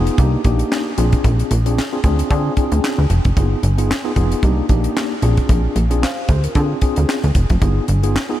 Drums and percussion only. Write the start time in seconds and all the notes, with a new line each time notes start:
0.07 closed hi-hat
0.18 kick, closed hi-hat
0.44 kick, closed hi-hat
0.59 closed hi-hat
0.72 snare, clap
0.98 closed hi-hat
1.12 kick, closed hi-hat
1.24 kick, closed hi-hat
1.39 closed hi-hat
1.51 closed hi-hat
1.66 closed hi-hat
1.78 snare, clap
2.04 kick, closed hi-hat
2.19 closed hi-hat
2.31 kick, closed hi-hat
2.57 kick, closed hi-hat
2.72 closed hi-hat
2.84 snare, clap
3.10 closed hi-hat
3.25 kick, closed hi-hat
3.37 kick, closed hi-hat
3.63 closed hi-hat
3.78 closed hi-hat
3.91 snare, clap
4.16 kick, closed hi-hat
4.32 closed hi-hat
4.43 kick, closed hi-hat
4.69 kick, closed hi-hat
4.84 closed hi-hat
4.97 snare, clap
5.22 closed hi-hat
5.37 kick, closed hi-hat
5.49 kick, closed hi-hat
5.76 closed hi-hat
5.91 closed hi-hat
6.03 snare, clap
6.29 kick, closed hi-hat
6.44 closed hi-hat
6.55 kick, closed hi-hat
6.82 kick, closed hi-hat
6.96 closed hi-hat
7.09 snare, clap
7.24 closed hi-hat
7.35 kick, closed hi-hat
7.50 kick, closed hi-hat
7.62 kick, closed hi-hat
7.88 closed hi-hat
8.03 closed hi-hat
8.16 snare, clap